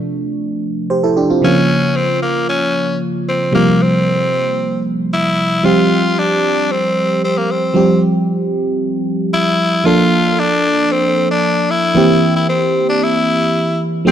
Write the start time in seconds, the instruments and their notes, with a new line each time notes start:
Already playing: fm electric piano C3 F3 A3 D4
0.90 fm electric piano G4 C5
1.03 fm electric piano E4 A4
1.17 fm electric piano D4 G4
1.30 fm electric piano C4 F4
1.42 fm electric piano C#3 F3 A#3 F4, tenor saxophone C#4
1.96 tenor saxophone C4
2.22 tenor saxophone A#3
2.49 tenor saxophone C#4
3.28 tenor saxophone C4
3.52 fm electric piano C3 F3 G3 A#3, tenor saxophone A#3
3.82 tenor saxophone C4
5.13 tenor saxophone E4
5.63 fm electric piano F3 G3 C4 G4, tenor saxophone F4
6.19 tenor saxophone D4
6.72 tenor saxophone C4
7.24 tenor saxophone C4
7.38 tenor saxophone A#3
7.51 tenor saxophone C4
7.74 fm electric piano F3 G3 C4 G4
9.34 tenor saxophone E4
9.84 fm electric piano F3 A#3 D4 A4, tenor saxophone F4
10.39 tenor saxophone D4
10.92 tenor saxophone C4
11.31 tenor saxophone D4
11.70 tenor saxophone E4
11.95 fm electric piano E3 A#3 C4 G4
12.36 tenor saxophone E4
12.49 tenor saxophone C4
12.89 tenor saxophone D4
13.03 tenor saxophone E4
14.05 fm electric piano F3 A3 C4 G4, tenor saxophone C4